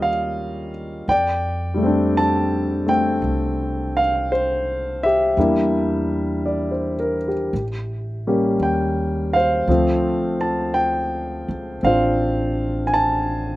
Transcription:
Already playing: D#2 G3 A#3 C#4 F4 G4 D#5
0.02 F5
1.08 F2 D5 G5
1.74 G3 A3
1.83 C4 D4
2.17 A5
2.87 A3 C4 G5
3.22 C2
3.97 F5
4.32 C5
5.03 G4 E5
5.37 E2 G3 A#3 D4 E4
6.46 D5
6.71 C5
7.00 A#4
7.28 G4
7.53 A1
8.27 G3 A#3 C#4 G4
8.60 D#2 G5
9.33 C5 F5
9.67 D2 F3 A3 C4
10.41 A5
10.74 G5
11.48 C#2
11.83 A1 C4 D4 F4 C5 F5
12.87 G#5
12.94 A5

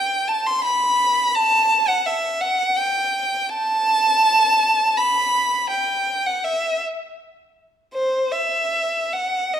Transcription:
Already playing: G5
0.28 A5
0.47 C6
0.64 B5
1.35 A5
1.88 F#5
2.06 E5
2.41 F#5
2.77 G5
3.50 A5
4.97 B5
5.69 G5
6.26 F#5
6.44 E5
7.94 C5
8.32 E5
9.13 F#5
9.54 D#5

